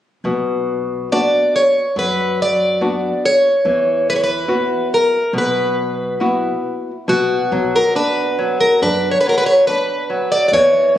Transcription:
0.24 1.36 B1 medium
0.24 1.09 B2 soft
1.12 1.80 B3 soft
1.12 1.80 D4 soft
1.12 1.80 F#4 soft
1.12 1.55 D5 medium
1.56 1.98 C#5 medium
1.96 3.06 F#2 medium
1.96 2.79 F#3 soft
1.96 2.41 B4 medium
2.42 3.25 D5 medium
2.81 3.48 B3 soft
2.81 3.49 D4 soft
2.81 3.49 F#4 soft
3.26 4.09 C#5 medium
3.65 4.74 E2 medium
3.65 4.46 E3 medium
4.10 4.15 B4 medium
4.16 4.21 C#5 medium
4.24 4.88 B4 medium
4.48 5.16 B3 soft
4.48 5.16 E4 soft
4.48 5.16 F#4 soft
4.94 5.32 A#4 medium
5.33 6.47 B1 medium
5.33 6.18 B2 medium
5.38 6.62 B4 medium
6.20 6.90 B3 soft
6.20 6.90 E4 soft
6.20 6.91 F#4 soft
7.08 7.36 B1 medium
7.08 10.49 B2 medium
7.08 7.76 F#4 medium
7.52 7.80 B1 medium
7.52 7.94 F#3 soft
7.76 7.95 A#4 medium
7.95 8.37 D4 soft
7.95 8.60 B4 medium
8.39 8.81 F#3 soft
8.61 8.82 A#4 medium
8.82 9.10 F#2 medium
8.82 9.24 D4 soft
8.82 9.11 B4 medium
9.11 9.20 C#5 medium
9.21 9.29 B4 medium
9.26 9.67 F#3 soft
9.26 9.37 A#4 medium
9.38 9.46 B4 medium
9.46 9.67 C#5 medium
9.67 10.09 D4 soft
9.67 10.31 B4 medium
10.10 10.51 F#3 soft
10.32 10.47 D5 medium
10.48 10.53 D5 medium
10.53 10.81 E2 medium
10.53 10.98 E3 medium
10.53 10.97 C#5 medium

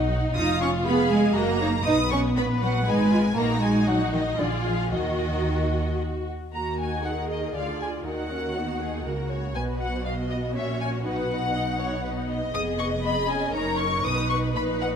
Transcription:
0.00 0.31 B1 medium
0.00 0.13 F#3 medium
0.00 0.36 D#4 medium
0.00 0.12 D#5 medium
0.00 0.12 F#5 medium
0.11 0.24 F#5 medium
0.24 0.37 D#5 medium
0.36 1.32 F1 medium
0.36 0.60 D#4 loud
0.36 0.86 F4 medium
0.36 0.82 F5 medium
0.36 0.59 D#6 medium
0.61 0.69 C#4 medium
0.61 0.69 C#6 medium
0.86 1.11 B3 loud
0.86 1.36 G#4 medium
0.86 1.35 F5 medium
0.86 1.10 B5 medium
1.10 1.36 G#3 loud
1.10 1.36 G#5 medium
1.35 1.86 F#1 medium
1.35 1.85 A#3 loud
1.35 1.61 F#4 medium
1.35 1.61 D#5 medium
1.35 1.86 A#5 medium
1.61 1.70 D#4 medium
1.61 1.69 C#5 medium
1.85 2.37 B1 medium
1.85 2.85 B3 medium
1.85 1.94 D#4 loud
1.85 2.35 B4 medium
1.85 2.11 D#6 medium
2.11 2.19 C#4 loud
2.11 2.19 C#6 medium
2.36 2.87 A#1 medium
2.36 2.45 B3 medium
2.36 2.85 B4 medium
2.36 2.45 B5 medium
2.62 2.87 F#3 medium
2.62 2.87 F#5 medium
2.86 3.37 G#1 medium
2.86 3.36 G#3 loud
2.86 3.12 D#4 medium
2.86 3.35 B4 medium
2.86 3.37 G#5 medium
3.12 3.20 F4 medium
3.37 4.37 A#1 medium
3.37 3.61 A#3 loud
3.37 4.37 D#4 medium
3.37 3.86 F#4 medium
3.37 3.62 A#5 medium
3.62 3.87 G#3 medium
3.62 3.87 G#5 medium
3.87 3.95 F#3 medium
3.87 4.39 F#4 medium
3.87 4.13 F#5 medium
4.13 4.21 D#3 medium
4.13 4.39 D#5 medium
4.39 4.92 A#1 medium
4.39 4.47 D3 medium
4.39 4.93 F4 medium
4.39 4.92 G#4 medium
4.39 4.66 D5 medium
4.66 4.93 F3 medium
4.66 4.93 F5 medium
4.92 6.33 D#2 medium
4.92 6.01 D#3 medium
4.92 6.33 F#4 medium
4.92 6.24 F#4 medium
4.92 5.98 D#5 medium
6.53 7.51 D#2 soft
6.53 7.51 D#3 soft
6.53 7.01 A#3 soft
6.53 7.00 F#4 soft
6.53 7.01 F#4 soft
6.53 6.77 A#5 medium
6.79 7.04 G#5 medium
7.04 7.55 D#4 soft
7.04 8.05 G#4 soft
7.04 7.55 A#4 soft
7.04 7.29 F#5 medium
7.29 7.54 D#5 soft
7.54 8.05 D2 soft
7.54 8.05 D3 soft
7.54 8.04 F4 soft
7.54 8.04 D5 soft
7.54 7.80 F5 medium
7.80 7.88 G#5 medium
8.05 9.03 D#2 soft
8.05 9.04 D#3 soft
8.05 8.31 D#4 soft
8.05 8.55 F#4 soft
8.05 8.55 A#4 soft
8.05 9.28 F#5 medium
8.31 8.56 C#4 soft
8.55 8.81 B3 soft
8.55 9.06 D#4 soft
8.55 8.80 F#4 soft
8.80 9.05 A#3 soft
8.80 9.05 G#4 soft
9.05 9.55 C#2 soft
9.05 9.55 C#3 soft
9.05 9.55 A#3 soft
9.05 9.54 F#4 soft
9.05 9.29 A#4 soft
9.30 9.55 C#5 soft
9.55 10.56 B1 soft
9.55 10.56 B2 soft
9.55 10.04 B3 soft
9.55 11.50 F#4 soft
9.55 10.06 B4 soft
9.55 9.63 G#5 medium
9.80 10.05 F#5 medium
10.05 10.54 B3 soft
10.05 10.56 D#5 medium
10.05 10.13 F5 medium
10.30 10.38 D#5 medium
10.56 11.05 A#1 medium
10.56 11.05 A#2 medium
10.56 11.05 C#4 soft
10.56 11.04 C#5 medium
10.56 10.80 E5 medium
10.80 10.88 G#5 medium
11.05 12.53 B1 medium
11.05 12.53 B2 medium
11.05 11.29 D#4 medium
11.05 11.53 B4 medium
11.05 12.26 F#5 medium
11.30 11.53 D#4 soft
11.53 12.02 D#4 medium
11.53 11.61 D#5 medium
11.79 12.03 C#5 medium
12.03 12.53 B3 medium
12.03 12.52 D#4 medium
12.03 12.11 B4 medium
12.28 13.51 D#5 medium
12.53 13.50 F1 medium
12.53 13.50 F2 medium
12.53 13.00 B3 medium
12.53 13.00 G#4 medium
12.53 12.62 D#6 medium
12.79 12.87 C#6 medium
13.04 13.12 B3 medium
13.04 13.53 G#4 medium
13.04 13.28 B5 medium
13.28 13.53 C#4 soft
13.28 13.54 G#5 medium
13.53 14.03 F#1 medium
13.53 14.03 F#2 medium
13.53 14.03 D#4 medium
13.53 14.03 A#4 medium
13.53 14.05 C#5 medium
13.53 13.78 A#5 medium
13.79 14.04 C#6 medium
14.04 14.55 B1 medium
14.04 14.55 B2 medium
14.04 14.54 D#4 medium
14.04 14.53 B4 medium
14.04 14.96 B4 medium
14.04 14.30 D#6 medium
14.30 14.38 C#6 medium
14.55 14.96 A#1 medium
14.55 14.96 A#2 medium
14.55 14.96 D#4 medium
14.55 14.96 B4 medium
14.55 14.63 B5 medium
14.80 14.88 F#5 medium

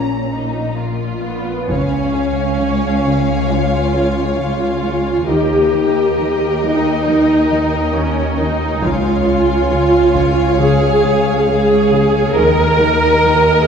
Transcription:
0.00 1.43 A#1 soft
0.00 1.43 A#2 soft
0.00 0.26 C#4 soft
0.00 0.76 A#5 soft
0.32 0.77 D#4 soft
0.77 1.69 F4 soft
1.22 1.65 B3 soft
1.67 5.24 C#2 soft
1.67 1.96 C#3 soft
1.67 3.48 C#4 soft
1.67 5.25 C#5 soft
1.67 5.25 F5 soft
1.67 5.24 G#5 soft
1.67 taiko soft
2.15 2.41 C#3 soft
2.59 2.86 C#3 soft
3.05 3.31 C#3 soft
3.49 3.76 C#3 soft
3.49 4.38 F4 soft
3.94 4.21 C#3 soft
4.39 4.66 C#3 soft
4.39 5.26 F4 soft
4.84 5.11 C#3 soft
5.27 8.79 D#2 soft
5.27 5.55 D#3 soft
5.27 6.59 G4 soft
5.27 8.79 A#4 soft
5.27 8.78 D#5 soft
5.27 8.79 G5 soft
5.73 6.00 D#3 soft
6.18 6.44 D#3 soft
6.63 6.89 D#3 soft
6.63 7.95 D#4 soft
7.07 7.33 D#3 soft
7.51 7.78 D#3 soft
7.95 8.21 D#3 soft
7.95 8.39 C#4 soft
8.38 8.65 D#3 soft
8.38 8.83 D#4 soft
8.81 12.32 C#2 soft
8.81 9.09 C#3 soft
8.81 10.59 F4 medium
8.81 12.32 C#5 soft
8.81 12.31 F5 soft
8.81 12.31 G#5 soft
8.81 taiko soft
9.26 9.53 C#3 soft
9.71 9.97 C#3 soft
10.14 10.41 C#3 soft
10.14 taiko soft
10.59 10.86 C#3 soft
10.59 11.46 G#4 medium
11.03 11.30 C#3 soft
11.47 11.74 C#3 soft
11.47 12.34 G#4 medium
11.92 12.19 C#3 soft
12.34 13.67 D#2 soft
12.34 12.62 D#3 medium
12.34 13.67 A#4 medium
12.34 13.67 A#4 soft
12.34 13.67 D#5 soft
12.34 13.67 G5 soft
12.80 13.06 D#3 soft
13.24 13.50 D#3 soft

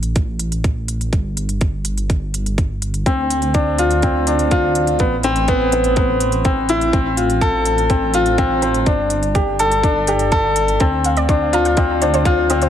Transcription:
0.00 1.10 A1 medium
0.00 closed hi-hat soft
0.16 kick medium
0.16 closed hi-hat soft
0.39 closed hi-hat medium
0.52 closed hi-hat soft
0.64 kick medium
0.64 closed hi-hat soft
0.88 closed hi-hat medium
1.01 closed hi-hat soft
1.13 3.04 G1 medium
1.13 kick medium
1.13 closed hi-hat soft
1.37 closed hi-hat medium
1.49 closed hi-hat soft
1.61 kick medium
1.61 closed hi-hat soft
1.85 closed hi-hat medium
1.98 closed hi-hat soft
2.10 kick medium
2.10 closed hi-hat soft
2.34 closed hi-hat medium
2.46 closed hi-hat soft
2.58 kick medium
2.58 closed hi-hat soft
2.82 closed hi-hat medium
2.94 closed hi-hat soft
3.06 4.97 D2 medium
3.06 3.29 C4 medium
3.06 kick medium
3.06 closed hi-hat soft
3.30 closed hi-hat medium
3.42 closed hi-hat soft
3.54 3.78 D4 medium
3.54 kick medium
3.54 closed hi-hat soft
3.78 3.93 F4 medium
3.78 closed hi-hat medium
3.91 closed hi-hat soft
4.02 4.26 C4 medium
4.02 kick medium
4.02 closed hi-hat soft
4.27 4.41 D4 medium
4.27 closed hi-hat medium
4.39 closed hi-hat soft
4.51 4.65 F4 medium
4.51 kick loud
4.51 closed hi-hat soft
4.75 closed hi-hat medium
4.87 closed hi-hat soft
4.99 6.91 A1 medium
4.99 5.14 B3 medium
4.99 kick medium
4.99 closed hi-hat soft
5.23 5.38 C4 medium
5.23 closed hi-hat medium
5.36 closed hi-hat soft
5.48 5.62 B3 medium
5.48 kick medium
5.48 closed hi-hat soft
5.72 5.87 B3 medium
5.72 closed hi-hat medium
5.84 closed hi-hat soft
5.96 6.20 B3 medium
5.96 kick medium
5.96 closed hi-hat soft
6.20 closed hi-hat medium
6.32 closed hi-hat soft
6.45 6.68 C4 medium
6.45 kick medium
6.45 closed hi-hat soft
6.69 6.83 E4 medium
6.69 closed hi-hat medium
6.81 closed hi-hat soft
6.93 8.84 A1 medium
6.93 7.16 C4 medium
6.93 kick medium
6.93 closed hi-hat soft
7.17 7.31 F4 medium
7.17 closed hi-hat medium
7.30 closed hi-hat soft
7.41 7.56 A4 medium
7.41 kick medium
7.41 closed hi-hat soft
7.65 closed hi-hat medium
7.78 closed hi-hat soft
7.90 8.04 C4 medium
7.90 kick medium
7.90 closed hi-hat soft
8.14 8.28 F4 medium
8.14 closed hi-hat medium
8.26 closed hi-hat soft
8.38 8.52 C4 medium
8.38 kick medium
8.38 closed hi-hat soft
8.62 8.77 C4 medium
8.62 closed hi-hat medium
8.74 closed hi-hat soft
8.86 10.78 G1 medium
8.86 9.10 D4 medium
8.86 kick medium
8.86 closed hi-hat soft
9.10 closed hi-hat medium
9.23 closed hi-hat soft
9.35 9.58 G4 medium
9.35 kick medium
9.35 closed hi-hat soft
9.59 9.73 A4 medium
9.59 closed hi-hat medium
9.72 closed hi-hat soft
9.83 10.07 D4 medium
9.83 kick medium
9.83 closed hi-hat soft
10.07 10.22 G4 medium
10.07 closed hi-hat medium
10.19 closed hi-hat soft
10.32 10.46 A4 medium
10.32 kick medium
10.32 closed hi-hat soft
10.56 closed hi-hat medium
10.68 closed hi-hat soft
10.80 12.69 D2 medium
10.80 11.04 C4 medium
10.80 10.89 A5 medium
10.80 kick medium
10.80 closed hi-hat soft
11.04 11.13 F5 medium
11.04 closed hi-hat medium
11.17 11.25 D5 loud
11.17 closed hi-hat soft
11.29 11.52 D4 medium
11.29 11.34 C5 medium
11.29 kick medium
11.29 closed hi-hat soft
11.53 11.67 F4 medium
11.53 11.62 A5 medium
11.53 closed hi-hat medium
11.65 11.77 F5 medium
11.65 closed hi-hat soft
11.77 12.00 C4 medium
11.77 11.86 D5 medium
11.77 kick medium
11.77 closed hi-hat soft
12.02 12.15 D4 medium
12.02 12.10 C5 medium
12.02 closed hi-hat medium
12.14 12.22 C5 loud
12.14 closed hi-hat soft
12.25 12.40 F4 medium
12.25 12.31 F5 medium
12.25 kick loud
12.25 closed hi-hat soft
12.50 12.64 C4 medium
12.50 12.58 D5 medium
12.50 closed hi-hat medium
12.62 12.69 C5 medium
12.62 closed hi-hat soft

